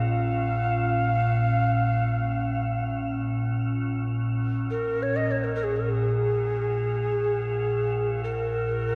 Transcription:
Already playing: ambient pad A#1 A#2, glass harmonica C#4 F4, native american-style wooden flute F5
4.71 native american-style wooden flute A#4
4.93 ambient pad A#1 A#2
5.02 native american-style wooden flute C#5
5.16 native american-style wooden flute D#5
5.31 native american-style wooden flute C#5
5.44 native american-style wooden flute A#4
5.55 native american-style wooden flute A#4
5.63 native american-style wooden flute G#4
5.76 native american-style wooden flute A#4
5.90 native american-style wooden flute G#4
8.24 native american-style wooden flute A#4

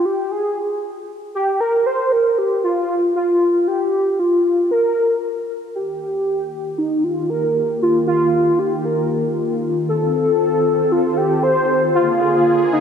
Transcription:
0.05 soft synth lead G4
0.31 soft synth lead G#4
1.35 soft synth lead G4
1.60 soft synth lead A#4
1.86 soft synth lead C5
2.12 soft synth lead A#4
2.38 soft synth lead G4
2.64 soft synth lead F4
3.16 soft synth lead F4
3.68 soft synth lead G4
4.19 soft synth lead F4
4.71 soft synth lead A#4
5.75 analog synth pad D#3 A#3 F4 G4, soft synth lead G4
6.78 soft synth lead D#4
7.04 soft synth lead F4
7.30 soft synth lead A#4
7.82 soft synth lead F4
8.07 soft synth lead F4
8.59 soft synth lead G4
8.85 soft synth lead A#4
9.88 analog synth pad C4 A4, soft synth lead A4
10.92 soft synth lead F4
11.17 soft synth lead G4
11.43 soft synth lead C5
11.95 analog synth pad D3 A#3 G#4, soft synth lead F4
12.21 soft synth lead F4
12.73 soft synth lead D#4

